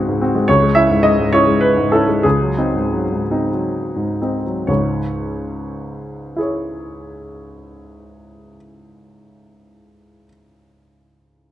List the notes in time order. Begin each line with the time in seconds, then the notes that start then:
Already playing: C#2 G#2 G#3 C4 F#4 G#4
0.08 G#2
0.21 C4 F#4
0.35 G#3
0.48 C#2 C#5
0.62 G#3
0.75 C#4 E4 E5
0.90 G#2
1.03 G#3 D#5
1.19 G#2
1.33 C#4 E4 C#5
1.47 G#3
1.61 B4
1.77 G#2
1.92 C#4 E4 A4
2.08 G#3
2.23 C#2 G#4
2.41 F#3
2.58 C4 D#4
2.75 G#2
2.92 F#3
3.12 G#2
3.31 C4 D#4
3.52 F#3
3.96 G#2
4.22 C4 D#4
4.46 F#3
4.67 C#2 G#2 C#5
6.36 E4 G#4
6.41 C#5